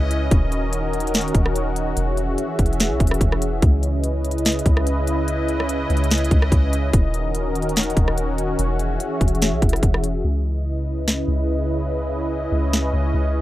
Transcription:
Already playing: 808-style bass C#2, analog synth pad C#3 C#4 E4 B4 D#5
0.11 closed hi-hat
0.31 808-style bass D#1, analog synth pad D#3 F#4 A#4, kick, closed hi-hat
0.52 closed hi-hat
0.73 closed hi-hat
0.93 closed hi-hat
1.00 closed hi-hat
1.07 closed hi-hat
1.14 snare, closed hi-hat
1.21 closed hi-hat
1.28 closed hi-hat
1.35 808-style bass D#1, kick, closed hi-hat
1.46 cross-stick
1.56 closed hi-hat
1.76 closed hi-hat
1.97 808-style bass E1, analog synth pad E3 G#4 E5, closed hi-hat
2.17 closed hi-hat
2.38 closed hi-hat
2.59 808-style bass E1, kick, closed hi-hat, open hi-hat
2.66 closed hi-hat
2.73 closed hi-hat
2.80 snare, closed hi-hat
2.90 808-style bass B1
3.00 808-style bass E1, kick, closed hi-hat
3.07 closed hi-hat
3.11 cross-stick, closed hi-hat
3.21 808-style bass E1, kick, closed hi-hat
3.32 cross-stick
3.42 closed hi-hat
3.62 808-style bass C#2, analog synth pad C#3 E4 B4 D#5, kick, closed hi-hat
3.83 closed hi-hat
4.04 closed hi-hat
4.25 closed hi-hat
4.31 closed hi-hat
4.38 closed hi-hat
4.45 snare, closed hi-hat
4.52 closed hi-hat
4.59 closed hi-hat
4.66 808-style bass C#2, kick, closed hi-hat
4.77 cross-stick
4.87 closed hi-hat
5.07 closed hi-hat
5.28 closed hi-hat
5.48 closed hi-hat
5.60 cross-stick
5.69 closed hi-hat
5.90 808-style bass C#2, closed hi-hat
5.97 closed hi-hat
6.04 closed hi-hat
6.11 snare, closed hi-hat
6.18 closed hi-hat
6.24 closed hi-hat
6.31 808-style bass C#2, kick, closed hi-hat
6.42 cross-stick
6.52 808-style bass C#2, kick, closed hi-hat
6.73 closed hi-hat
6.93 808-style bass D#1, analog synth pad D#3 C#4 F#4 A#4, kick, closed hi-hat
7.14 closed hi-hat
7.35 closed hi-hat
7.55 closed hi-hat
7.62 closed hi-hat
7.69 closed hi-hat
7.76 snare, closed hi-hat
7.83 closed hi-hat
7.90 closed hi-hat
7.97 808-style bass D#1, kick, closed hi-hat
8.08 cross-stick
8.18 closed hi-hat
8.38 closed hi-hat
8.59 808-style bass E1, analog synth pad E3 G#4 E5, closed hi-hat
8.79 closed hi-hat
9.00 closed hi-hat
9.21 808-style bass E1, kick, closed hi-hat, open hi-hat
9.28 closed hi-hat
9.35 closed hi-hat
9.42 snare, closed hi-hat
9.52 808-style bass B1
9.62 808-style bass E1, kick, closed hi-hat
9.69 closed hi-hat
9.73 cross-stick, closed hi-hat
9.83 808-style bass E1, kick, closed hi-hat
9.94 cross-stick
10.04 closed hi-hat
10.24 808-style bass C#2, analog synth pad C#3 C#4 E4 B4 D#5
11.08 snare
11.28 808-style bass C#2
12.52 808-style bass C#2
12.73 snare
12.93 808-style bass C#2
13.14 808-style bass C#2

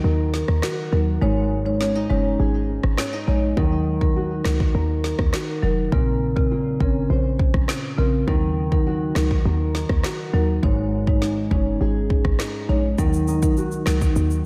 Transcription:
Already playing: nylon-string guitar D#3 D#4 F#4
0.04 808-style bass D#2, nylon-string guitar A#4
0.34 snare
0.48 808-style bass D#2, cross-stick
0.62 nylon-string guitar F#4, cross-stick, snare
0.92 808-style bass D#2, marimba F#3 D#4 A#4
1.21 808-style bass G#1, nylon-string guitar G#2, marimba G#3 D#4 C#5
1.66 marimba G#3 D#4 C#5
1.81 nylon-string guitar C#4, snare
1.95 nylon-string guitar D#4
2.10 808-style bass F#1, marimba G#3 D#4 C#5, nylon-string guitar C#4
2.39 808-style bass G#1, nylon-string guitar G#4
2.83 808-style bass G#1, cross-stick
2.97 nylon-string guitar C#4, cross-stick, snare
3.13 nylon-string guitar D#4
3.27 808-style bass A#1, marimba G#3 D#4 C#5
3.57 808-style bass D#2, nylon-string guitar D#3, marimba F#3 D#4 A#4, kick
4.01 marimba F#3 D#4 A#4, kick
4.16 nylon-string guitar F#4
4.45 808-style bass C#2, marimba F#3 D#4 A#4, nylon-string guitar D#4, cross-stick, snare
4.60 kick
4.75 808-style bass D#2, nylon-string guitar A#4
5.04 snare
5.19 808-style bass D#2, kick, cross-stick
5.33 nylon-string guitar F#4, cross-stick, snare
5.63 808-style bass F1, marimba F#3 D#4 A#4
5.92 808-style bass A#1, nylon-string guitar A#2, marimba C#3 C4 A#4, kick
6.36 marimba C#3 C4 A#4, kick
6.51 nylon-string guitar F4
6.80 808-style bass G#1, marimba C#3 C4 A#4, nylon-string guitar C#4, kick
7.10 808-style bass A#1, nylon-string guitar C5
7.39 kick
7.54 808-style bass A#1, kick, cross-stick
7.68 nylon-string guitar F4, cross-stick, snare
7.98 808-style bass A#1, marimba C#3 C4 A#4
8.27 808-style bass D#2, nylon-string guitar D#3, marimba F#3 D#4 A#4, kick
8.72 marimba F#3 D#4 A#4, kick
8.87 nylon-string guitar F#4
9.15 808-style bass C#2, marimba F#3 D#4 A#4, nylon-string guitar D#4, cross-stick, snare
9.31 kick
9.45 808-style bass D#2, nylon-string guitar A#4
9.75 snare
9.89 808-style bass D#2, kick, cross-stick
10.03 nylon-string guitar F#4, cross-stick, snare
10.33 808-style bass D#2, marimba F#3 D#4 A#4
10.63 808-style bass G#1, nylon-string guitar G#2, marimba G#3 D#4 C#5, kick
11.07 marimba G#3 D#4 C#5, kick
11.22 nylon-string guitar D#4, snare
11.51 808-style bass F#1, marimba G#3 D#4 C#5, nylon-string guitar C#4, kick
11.81 808-style bass G#1, nylon-string guitar G#4
12.10 kick
12.25 808-style bass G#1, kick, cross-stick
12.39 nylon-string guitar D#4, cross-stick, snare
12.69 808-style bass A#1, marimba G#3 D#4 C#5
12.98 808-style bass D#2, nylon-string guitar D#3, marimba F#3 D#4 A#4, kick, shaker
13.13 shaker
13.28 nylon-string guitar D#4, shaker
13.42 808-style bass C2, marimba F#3 D#4 A#4, kick, shaker
13.57 nylon-string guitar F#4, shaker
13.72 shaker
13.86 808-style bass C#2, marimba F#3 D#4 A#4, cross-stick, snare, shaker
14.01 kick, shaker
14.16 808-style bass D#2, shaker
14.30 shaker

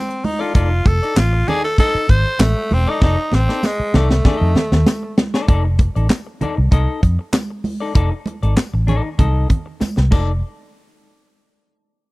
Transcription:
Already playing: tenor saxophone C4
0.09 muted clean electric guitar stroke, closed hi-hat
0.24 tenor saxophone D#4, open hi-hat, high conga
0.39 clean electric guitar D#4 A4 D5, tenor saxophone F4
0.54 fingered electric bass F1, clean electric guitar D#4 A4 D5, tenor saxophone F4, kick, closed hi-hat, muted conga
0.71 muted clean electric guitar stroke
0.85 fingered electric bass F1, tenor saxophone A4, muted clean electric guitar stroke, kick, closed hi-hat, muted conga
1.03 clean electric guitar D#4 A4 D5, closed hi-hat
1.16 fingered electric bass A1, tenor saxophone F4, snare, clap, closed hi-hat, tambourine, high conga
1.33 muted clean electric guitar stroke
1.48 clean electric guitar D#4 A4 D5, tenor saxophone G#4, closed hi-hat, muted conga, low conga
1.64 tenor saxophone A4, muted clean electric guitar stroke
1.78 clean electric guitar D#4 A4 D#5, tenor saxophone A4, kick, closed hi-hat, muted conga
1.95 muted fingered electric bass stroke
2.09 fingered electric bass G#1, tenor saxophone C5, muted clean electric guitar stroke, kick, closed hi-hat
2.26 muted clean electric guitar stroke
2.39 fingered electric bass A1, tenor saxophone A3, muted clean electric guitar stroke, snare, clap, closed hi-hat, tambourine, high conga
2.57 muted clean electric guitar stroke
2.71 fingered electric bass E1, tenor saxophone C4, open hi-hat, high conga
2.87 clean electric guitar D#4 A4 D5, tenor saxophone D#4
3.01 fingered electric bass F1, clean electric guitar D#4 A4 D5, tenor saxophone D#4, kick, snare, muted conga
3.18 muted clean electric guitar stroke
3.32 fingered electric bass A1, tenor saxophone C4, muted clean electric guitar stroke, snare, muted conga
3.49 clean electric guitar D#4 A4 D5, snare
3.63 tenor saxophone G#3, muted clean electric guitar stroke, snare, tambourine, high conga
3.80 muted fingered electric bass stroke, muted clean electric guitar stroke
3.94 fingered electric bass C2, tenor saxophone A3, clean electric guitar D#4 A4 D5, snare, muted conga, low conga
4.11 muted clean electric guitar stroke, snare
4.25 clean electric guitar D4 G#4 D5, kick, snare, muted conga, low conga
4.37 clean electric guitar D#4 A4 D#5
4.41 fingered electric bass F2
4.55 muted clean electric guitar stroke, snare, low conga
4.72 fingered electric bass D#2, muted clean electric guitar stroke, snare
4.86 muted clean electric guitar stroke, snare, tambourine, high conga
5.03 muted clean electric guitar stroke
5.18 snare, high conga
5.34 clean electric guitar D#4 A4 D5, snare
5.48 fingered electric bass F1, clean electric guitar D#4 A4 D5, kick, closed hi-hat, muted conga
5.65 muted clean electric guitar stroke
5.79 muted clean electric guitar stroke, kick, closed hi-hat, muted conga
5.95 fingered electric bass A1, clean electric guitar D#4 A4 D5, closed hi-hat
6.10 snare, clap, closed hi-hat, tambourine, high conga
6.27 muted clean electric guitar stroke
6.41 clean electric guitar D#4 A4 D5, muted fingered electric bass stroke, closed hi-hat, muted conga, low conga
6.57 fingered electric bass C2, muted clean electric guitar stroke
6.71 fingered electric bass C2, clean electric guitar D#4 A4 D#5, kick, closed hi-hat, muted conga
7.03 fingered electric bass F2, muted clean electric guitar stroke, kick, closed hi-hat
7.19 muted clean electric guitar stroke
7.33 muted clean electric guitar stroke, snare, clap, closed hi-hat, tambourine, high conga
7.50 muted clean electric guitar stroke
7.64 open hi-hat, high conga
7.80 clean electric guitar D#4 A4 D5
7.95 fingered electric bass F1, clean electric guitar D#4 A4 D5, kick, closed hi-hat, muted conga
8.12 muted clean electric guitar stroke
8.26 muted clean electric guitar stroke, closed hi-hat, muted conga
8.43 fingered electric bass G#1, clean electric guitar D#4 A4 D5, closed hi-hat
8.57 snare, clap, closed hi-hat, tambourine, high conga
8.74 fingered electric bass A1, muted clean electric guitar stroke
8.87 clean electric guitar D#4 A4 D5, closed hi-hat, muted conga, low conga
9.04 muted clean electric guitar stroke
9.19 fingered electric bass C2, clean electric guitar D#4 A4 D#5, kick, closed hi-hat, muted conga, low conga
9.50 muted clean electric guitar stroke, kick, closed hi-hat, low conga
9.66 muted clean electric guitar stroke
9.80 muted clean electric guitar stroke, muted fingered electric bass stroke, snare, tambourine, high conga
9.96 fingered electric bass C2, muted clean electric guitar stroke, snare
10.11 fingered electric bass F1, clean electric guitar D#4 A4 D5, kick, crash, tambourine, muted conga

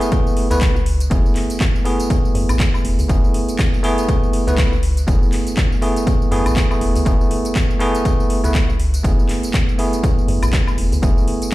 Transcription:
Already playing: tine electric piano A3 B3 E4 G#4
0.01 closed hi-hat, tambourine
0.12 kick, closed hi-hat, tambourine
0.27 tambourine
0.37 open hi-hat
0.50 fm bass C#2, tine electric piano A3 B3 E4 B4, closed hi-hat, tambourine
0.61 kick, clap, closed hi-hat, tambourine
0.76 fm bass C#2, tambourine
0.86 open hi-hat
1.00 closed hi-hat, tambourine
1.10 fm bass F#1, tine electric piano A3 B3 E4 G#4, kick, closed hi-hat, tambourine
1.26 tambourine
1.36 fm bass F#1, clap, open hi-hat
1.50 closed hi-hat, tambourine
1.60 kick, clap, closed hi-hat, tambourine
1.75 tambourine
1.84 tine electric piano A3 B3 E4 G#4, open hi-hat
2.00 closed hi-hat, tambourine
2.10 kick, closed hi-hat, tambourine
2.25 tambourine
2.35 fm bass F#2, open hi-hat
2.49 fm bass A1, closed hi-hat, tambourine, high woodblock
2.60 kick, clap, closed hi-hat, tambourine
2.74 tambourine, high woodblock
2.85 fm bass E1, open hi-hat
2.99 fm bass C#2, open hi-hat, tambourine
3.09 fm bass F#1, tine electric piano A3 B3 E4 G#4, kick, closed hi-hat, tambourine
3.24 tambourine
3.34 fm bass F#1, open hi-hat
3.48 closed hi-hat, tambourine
3.59 kick, clap, closed hi-hat, tambourine
3.74 tambourine
3.83 tine electric piano A3 B3 E4 G#4, open hi-hat
3.98 closed hi-hat, tambourine
4.09 kick, closed hi-hat, tambourine
4.23 tambourine
4.33 open hi-hat
4.47 fm bass C#2, tine electric piano A3 B3 E4 B4, closed hi-hat, tambourine
4.58 kick, clap, closed hi-hat, tambourine
4.72 fm bass C#2, tambourine
4.83 open hi-hat
4.97 closed hi-hat, tambourine
5.07 fm bass F#1, tine electric piano A3 B3 E4 G#4, kick, closed hi-hat, tambourine
5.23 tambourine
5.32 fm bass F#1, clap, open hi-hat
5.47 closed hi-hat, tambourine
5.57 kick, clap, closed hi-hat, tambourine
5.72 tambourine
5.82 tine electric piano A3 B3 E4 G#4, open hi-hat
5.96 closed hi-hat, tambourine
6.07 kick, closed hi-hat, tambourine
6.22 tambourine
6.31 fm bass F#2, tine electric piano A3 B3 E4 G#4, open hi-hat
6.46 fm bass A1, closed hi-hat, tambourine, high woodblock
6.56 kick, clap, closed hi-hat, tambourine
6.70 tine electric piano A3 B3 E4 G#4, tambourine, high woodblock
6.81 fm bass E1, open hi-hat
6.95 fm bass C#2, open hi-hat, tambourine
7.05 fm bass F#1, tine electric piano A3 B3 E4 G#4, kick, closed hi-hat, tambourine
7.21 tambourine
7.31 fm bass F#1, open hi-hat
7.45 closed hi-hat, tambourine
7.55 kick, clap, closed hi-hat, tambourine
7.70 tambourine
7.80 tine electric piano A3 B3 E4 G#4, open hi-hat
7.95 closed hi-hat, tambourine
8.05 kick, closed hi-hat, tambourine
8.20 tambourine
8.30 open hi-hat
8.44 fm bass C#2, tine electric piano A3 B3 E4 B4, closed hi-hat, tambourine
8.55 kick, clap, closed hi-hat, tambourine
8.69 fm bass C#2, tambourine
8.80 open hi-hat
8.94 closed hi-hat, tambourine
9.04 fm bass F#1, tine electric piano A3 B3 E4 G#4, kick, closed hi-hat, tambourine
9.19 tambourine
9.29 fm bass F#1, clap, open hi-hat
9.43 closed hi-hat, tambourine
9.54 kick, clap, closed hi-hat, tambourine
9.69 tambourine
9.78 tine electric piano A3 B3 E4 G#4, open hi-hat
9.93 closed hi-hat, tambourine
10.04 kick, closed hi-hat, tambourine
10.18 tambourine
10.28 fm bass F#2, open hi-hat
10.43 fm bass A1, closed hi-hat, tambourine, high woodblock
10.53 kick, clap, closed hi-hat, tambourine
10.67 tambourine, high woodblock
10.78 fm bass E1, open hi-hat
10.92 fm bass C#2, open hi-hat, tambourine
11.02 fm bass F#1, tine electric piano A3 B3 E4 G#4, kick, closed hi-hat, tambourine
11.18 tambourine
11.28 fm bass F#1, open hi-hat
11.42 closed hi-hat, tambourine

